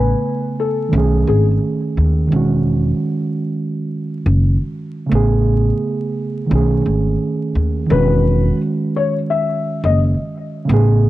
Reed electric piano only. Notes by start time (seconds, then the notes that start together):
Already playing: C#3 A3 B3 G#5
0.89 D#3 A3
0.95 C#4 G#4
2.27 D#3 G#3
2.33 C#4 F#4
5.06 C#3 A3
5.12 B3 G#4
6.46 D#3 A3
6.52 C#4 G#4
7.86 D#3 G#3
7.92 C#4 F#4
10.65 C#3 A3
10.71 B3 G#4